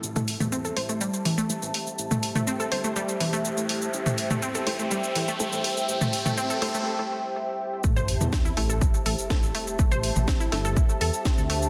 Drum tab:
HH |--o---o---o---o-|--o---o---o---o-|--o---o---o---o-|--o---o---------|
SH |xxxxxx-xxxxxxxxx|xxxxxx-xxxxxxxxx|xxxxxx-xxxxxxxxx|xxxxxx-x--------|
SD |----------------|----------------|----------------|----------------|
T2 |-o-o------------|-o-o------------|-o-o------------|-o-o------------|
BD |----------------|----------------|----------------|----------------|

HH |--o---o---o---o-|--o---o---o---o-|
SH |xxxxxx-xxxxxxxxx|xxxxxx-xxxxxxxxx|
SD |----o-------o---|----o-o-----o---|
T2 |-o-o------------|-o-o------------|
BD |o---o---o---o---|o---o---o---o---|